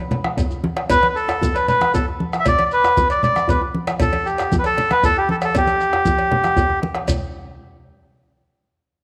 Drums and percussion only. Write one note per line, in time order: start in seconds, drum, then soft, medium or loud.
0.11 bombo rim soft
0.11 cowbell medium
0.11 djembe slap soft
0.11 low conga medium
0.24 bombo rim medium
0.24 djembe slap medium
0.24 high conga medium
0.37 bombo low loud
0.37 cowbell medium
0.37 djembe slap soft
0.37 djembe bass medium
0.37 shekere medium
0.51 djembe bass soft
0.51 shekere soft
0.64 djembe slap medium
0.64 high conga medium
0.77 bombo rim medium
0.77 cowbell medium
0.77 djembe slap medium
0.89 bombo low loud
0.89 cowbell medium
0.89 djembe bass medium
0.89 low conga medium
0.89 shekere medium
1.03 bombo rim soft
1.03 cowbell medium
1.03 high conga medium
1.17 shekere soft
1.28 bombo rim medium
1.28 cowbell medium
1.28 djembe slap medium
1.28 djembe tone medium
1.28 shekere soft
1.42 bombo low loud
1.42 high conga medium
1.42 djembe bass medium
1.42 shekere medium
1.56 cowbell medium
1.56 high conga soft
1.56 shekere soft
1.68 cowbell medium
1.68 low conga medium
1.68 shekere soft
1.81 bombo rim medium
1.81 djembe slap medium
1.81 high conga medium
1.81 shekere soft
1.94 bombo low loud
1.94 cowbell medium
1.94 djembe bass medium
1.94 shekere medium
2.08 djembe slap soft
2.08 djembe tone medium
2.20 high conga medium
2.33 bombo rim medium
2.33 djembe slap medium
2.33 shekere soft
2.45 bombo low loud
2.45 cowbell medium
2.45 low conga medium
2.45 djembe bass medium
2.45 shekere medium
2.59 bombo rim soft
2.59 cowbell medium
2.59 high conga medium
2.71 shekere soft
2.84 bombo rim medium
2.84 cowbell medium
2.84 djembe slap medium
2.84 djembe tone medium
2.84 shekere soft
2.97 bombo low loud
2.97 high conga medium
2.97 djembe bass medium
2.97 shekere medium
3.10 cowbell medium
3.10 high conga soft
3.10 shekere soft
3.23 cowbell medium
3.23 low conga medium
3.23 shekere soft
3.36 bombo rim medium
3.36 djembe slap medium
3.36 high conga medium
3.36 shekere soft
3.48 bombo low loud
3.48 cowbell medium
3.48 djembe bass medium
3.48 shekere medium
3.61 djembe slap soft
3.61 djembe tone medium
3.75 high conga medium
3.87 bombo rim medium
3.87 cowbell medium
3.87 djembe slap medium
3.87 shekere soft
4.00 bombo low loud
4.00 cowbell medium
4.00 low conga medium
4.00 djembe bass medium
4.00 shekere medium
4.13 bombo rim soft
4.13 cowbell medium
4.13 high conga medium
4.27 shekere soft
4.38 bombo rim medium
4.38 cowbell medium
4.38 djembe slap medium
4.38 djembe tone medium
4.38 shekere soft
4.52 bombo low loud
4.52 high conga medium
4.52 djembe bass medium
4.52 shekere medium
4.64 cowbell medium
4.64 high conga soft
4.64 shekere soft
4.78 cowbell medium
4.78 low conga medium
4.78 shekere soft
4.91 bombo rim medium
4.91 djembe slap medium
4.91 high conga medium
4.91 shekere soft
5.03 bombo low loud
5.03 cowbell medium
5.03 djembe bass medium
5.03 shekere medium
5.16 djembe slap soft
5.16 djembe tone medium
5.29 high conga medium
5.42 bombo rim medium
5.42 cowbell medium
5.42 shekere soft
5.55 bombo low loud
5.55 cowbell medium
5.55 djembe slap soft
5.55 high conga soft
5.55 low conga medium
5.55 djembe bass medium
5.55 shekere medium
5.67 cowbell soft
5.67 high conga medium
5.67 shekere soft
5.81 bombo rim soft
5.81 shekere soft
5.93 bombo rim medium
5.93 cowbell soft
5.93 djembe slap medium
5.93 djembe tone medium
6.05 bombo low loud
6.05 high conga medium
6.05 djembe bass medium
6.05 shekere medium
6.19 cowbell medium
6.19 djembe slap soft
6.31 bombo rim soft
6.31 cowbell soft
6.31 low conga loud
6.44 bombo rim medium
6.44 djembe slap medium
6.44 high conga medium
6.44 shekere soft
6.56 bombo low loud
6.56 cowbell soft
6.56 djembe bass medium
6.56 shekere medium
6.69 bombo rim soft
6.69 djembe slap soft
6.69 djembe tone medium
6.69 high conga soft
6.82 bombo rim soft
6.82 djembe slap soft
6.82 high conga loud
6.95 bombo rim medium
6.95 cowbell soft
6.95 djembe slap medium
7.08 bombo low medium
7.08 cowbell medium
7.08 djembe bass medium
7.08 low conga medium
7.08 shekere medium